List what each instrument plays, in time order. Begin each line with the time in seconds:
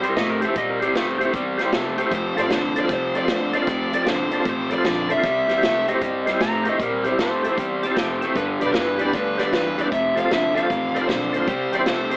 0.02 overdriven electric guitar C3 G3, tonewheel organ G4 C5, electric slide guitar C5, closed hi-hat
0.09 tonewheel organ C4 E4 G4 A#4
0.16 upright bass A2, overdriven electric guitar C3 A3, electric slide guitar D#5, kick, snare, closed hi-hat
0.30 electric slide guitar A#4
0.41 overdriven electric guitar C3 A3, tonewheel organ G4 C5, electric slide guitar C5, closed hi-hat
0.48 tonewheel organ C4 E4 G4 C5
0.56 upright bass A#2, overdriven electric guitar C3 G3, electric slide guitar D#5, kick, closed hi-hat
0.70 electric slide guitar A#4
0.80 overdriven electric guitar C3 G3, tonewheel organ G4 C5, electric slide guitar C5, closed hi-hat
0.87 tonewheel organ C4 E4 G4 C5
0.94 upright bass G2, overdriven electric guitar C3 A3, snare, closed hi-hat
1.18 overdriven electric guitar C3 A3, tonewheel organ G4 C5, closed hi-hat
1.24 tonewheel organ C4 E4 G4 C5
1.33 upright bass E2, overdriven electric guitar C3 G3, kick, closed hi-hat
1.58 overdriven electric guitar C3 G3, tonewheel organ G4 C5, snare, closed hi-hat
1.65 tonewheel organ C4 E4 G4 C5
1.72 upright bass C2, overdriven electric guitar C3 A3, kick, snare, closed hi-hat
1.97 overdriven electric guitar C3 A3, tonewheel organ G4 C5, closed hi-hat
2.06 tonewheel organ C4 E4 G4 C5
2.11 upright bass F1, overdriven electric guitar F2 C3, kick, closed hi-hat
2.15 lead electric guitar C5
2.36 upright bass A1, overdriven electric guitar F2 C3, tonewheel organ A4 C5, closed hi-hat
2.40 tonewheel organ C4 F4 A4, lead electric guitar D5
2.45 tonewheel organ C5
2.49 upright bass F1, overdriven electric guitar F2 D3, snare, closed hi-hat
2.54 lead electric guitar C5
2.75 overdriven electric guitar F2 D3, tonewheel organ A4 C5, closed hi-hat
2.80 tonewheel organ C4, lead electric guitar D5
2.84 tonewheel organ F4 A4 C5
2.89 upright bass C2, overdriven electric guitar F2 C3, kick, snare, closed hi-hat
2.93 lead electric guitar C5
3.15 overdriven electric guitar F2 C3, tonewheel organ A4 C5, lead electric guitar D5, closed hi-hat
3.23 tonewheel organ C4 F4 A4 C5
3.28 upright bass D2, overdriven electric guitar F2 D3, lead electric guitar C5, kick, snare, closed hi-hat
3.53 overdriven electric guitar F2 D3, tonewheel organ A4 C5, lead electric guitar D5, closed hi-hat
3.62 tonewheel organ C4 F4 A4 C5
3.67 upright bass D2, overdriven electric guitar F2 C3, kick, snare, closed hi-hat
3.93 overdriven electric guitar F2 C3, tonewheel organ A4 D5, closed hi-hat
4.01 tonewheel organ C4 F4 A4 D5
4.06 upright bass C2, overdriven electric guitar F2 D3, lead electric guitar C5, snare, closed hi-hat
4.31 overdriven electric guitar F2 D3, tonewheel organ A4 C5, closed hi-hat
4.39 tonewheel organ C4 F4 A4 C5
4.45 upright bass A1, overdriven electric guitar F2 C3, kick, closed hi-hat
4.49 lead electric guitar C5
4.70 overdriven electric guitar F2 C3, tonewheel organ A4 D5, lead electric guitar D5, closed hi-hat
4.78 tonewheel organ C4 F4 A4 C5
4.84 upright bass A#1, overdriven electric guitar F2 D3, kick, snare, closed hi-hat
5.09 overdriven electric guitar F2 D3, tonewheel organ A4 C5, lead electric guitar E5, closed hi-hat
5.17 tonewheel organ C4 F4 A4 C5
5.23 upright bass C2, overdriven electric guitar C3 G3, lead electric guitar E5, kick, snare, closed hi-hat
5.48 upright bass E2, overdriven electric guitar C3 G3, tonewheel organ G4 C5, snare, closed hi-hat
5.57 tonewheel organ C4 E4 G4 C5
5.62 upright bass C2, overdriven electric guitar C3 A3, snare, closed hi-hat
5.88 overdriven electric guitar C3 A3, tonewheel organ G4 C5, electric slide guitar D#5, closed hi-hat
5.94 tonewheel organ C4 E4 G4 C5
6.01 upright bass G2, overdriven electric guitar C3 G3, kick, closed hi-hat
6.26 overdriven electric guitar C3 G3, tonewheel organ G4 C5, snare, closed hi-hat
6.33 tonewheel organ C4 E4 G4 C5
6.40 upright bass A2, overdriven electric guitar C3 A3, electric slide guitar A#5, kick, snare, closed hi-hat
6.64 overdriven electric guitar C3 A3, tonewheel organ G4 A#4, closed hi-hat
6.69 tonewheel organ C4 E4 G4 C5, electric slide guitar D#5
6.79 upright bass A#2, overdriven electric guitar C3 G3, electric slide guitar A#4, kick, closed hi-hat
7.04 overdriven electric guitar C3 G3, tonewheel organ G4 C5, closed hi-hat
7.09 tonewheel organ C4 E4 G4 C5, electric slide guitar C5
7.19 upright bass G2, overdriven electric guitar C3 A3, electric slide guitar C5, snare, closed hi-hat
7.43 overdriven electric guitar C3 A3, tonewheel organ G4 A4, closed hi-hat
7.50 tonewheel organ C4 E4 G4 C5
7.57 upright bass E2, overdriven electric guitar C3 G3, kick, closed hi-hat
7.83 overdriven electric guitar C3 G3, tonewheel organ G4 D5 A5, closed hi-hat
7.90 tonewheel organ C4 E4 G4 C5
7.97 upright bass F1, overdriven electric guitar C3 A3, tonewheel organ G5, kick, snare, closed hi-hat
8.21 overdriven electric guitar C3 A3, tonewheel organ G4 C5 E5, closed hi-hat
8.28 tonewheel organ C4 E4 G4 C5
8.35 upright bass G1, overdriven electric guitar G2 D3, lead electric guitar B4, kick, closed hi-hat
8.59 upright bass B1, overdriven electric guitar G2 D3, tonewheel organ G4 B4, lead electric guitar D5, closed hi-hat
8.65 tonewheel organ B3 D4 G4 B4
8.72 upright bass G1, overdriven electric guitar G2, lead electric guitar A#4 B4, snare, closed hi-hat
8.76 overdriven electric guitar E3
8.97 overdriven electric guitar G2, tonewheel organ G4 B4, lead electric guitar D5, closed hi-hat
9.01 overdriven electric guitar E3, tonewheel organ B3
9.05 tonewheel organ D4 G4 B4
9.13 upright bass D2, overdriven electric guitar G2 D3, lead electric guitar B4, kick, snare, closed hi-hat
9.38 overdriven electric guitar G2 D3, tonewheel organ G4 B4, lead electric guitar D5, snare, closed hi-hat
9.44 tonewheel organ B3 D4 G4 B4
9.52 upright bass E2, overdriven electric guitar G2 E3, lead electric guitar B4, kick, snare, closed hi-hat
9.77 overdriven electric guitar G2 E3, tonewheel organ G4 B4, lead electric guitar D5, closed hi-hat
9.84 tonewheel organ B3 D4 G4 B4
9.91 upright bass F1, overdriven electric guitar F2 C3, lead electric guitar E5, kick, closed hi-hat
10.15 overdriven electric guitar F2 C3, tonewheel organ A4 C5, lead electric guitar F5, closed hi-hat
10.24 tonewheel organ C4 F4 A4 C5
10.30 upright bass C2, overdriven electric guitar F2 D3, lead electric guitar E5, snare, closed hi-hat
10.55 overdriven electric guitar F2 D3, tonewheel organ A4 C5, lead electric guitar F5, closed hi-hat
10.62 tonewheel organ C4 F4 A4 C5
10.68 upright bass A1, overdriven electric guitar F2 C3, kick, closed hi-hat
10.94 overdriven electric guitar F2 C3, tonewheel organ A4 C5, lead electric guitar D5, closed hi-hat
11.01 tonewheel organ C4 F4 A4 C5
11.07 upright bass B1, overdriven electric guitar F2 D3, lead electric guitar C5, kick, snare, closed hi-hat
11.33 overdriven electric guitar F2 D3, tonewheel organ A4 C5, closed hi-hat
11.40 tonewheel organ C4 F4 A4 C5
11.47 upright bass C2, overdriven electric guitar C3 G3, lead electric guitar C5, kick, closed hi-hat
11.72 upright bass E2, overdriven electric guitar C3 G3, tonewheel organ G4 C5, lead electric guitar D5, closed hi-hat
11.79 tonewheel organ C4 E4 G4 C5
11.86 upright bass C2, overdriven electric guitar C3 A3, lead electric guitar C5, snare, closed hi-hat
12.10 overdriven electric guitar C3 A3, tonewheel organ G4 C5, closed hi-hat